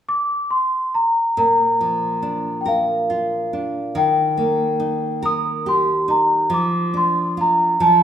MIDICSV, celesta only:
0, 0, Header, 1, 2, 480
1, 0, Start_track
1, 0, Key_signature, -2, "major"
1, 0, Tempo, 868307
1, 755, Time_signature, 6, 3, 24, 8
1, 1720, Tempo, 853485
1, 4486, End_track
2, 0, Start_track
2, 0, Title_t, "Celesta"
2, 0, Program_c, 0, 8
2, 47, Note_on_c, 0, 86, 85
2, 279, Note_on_c, 0, 84, 67
2, 287, Note_off_c, 0, 86, 0
2, 500, Note_off_c, 0, 84, 0
2, 523, Note_on_c, 0, 82, 72
2, 760, Note_off_c, 0, 82, 0
2, 767, Note_on_c, 0, 82, 74
2, 1424, Note_off_c, 0, 82, 0
2, 1442, Note_on_c, 0, 79, 51
2, 1480, Note_off_c, 0, 79, 0
2, 1481, Note_on_c, 0, 77, 74
2, 2205, Note_on_c, 0, 79, 80
2, 2223, Note_off_c, 0, 77, 0
2, 2898, Note_off_c, 0, 79, 0
2, 2926, Note_on_c, 0, 87, 89
2, 3146, Note_off_c, 0, 87, 0
2, 3168, Note_on_c, 0, 84, 73
2, 3402, Note_on_c, 0, 82, 75
2, 3410, Note_off_c, 0, 84, 0
2, 3648, Note_off_c, 0, 82, 0
2, 3648, Note_on_c, 0, 86, 74
2, 3890, Note_off_c, 0, 86, 0
2, 3890, Note_on_c, 0, 84, 72
2, 3996, Note_off_c, 0, 84, 0
2, 4137, Note_on_c, 0, 82, 70
2, 4353, Note_off_c, 0, 82, 0
2, 4366, Note_on_c, 0, 81, 86
2, 4486, Note_off_c, 0, 81, 0
2, 4486, End_track
0, 0, End_of_file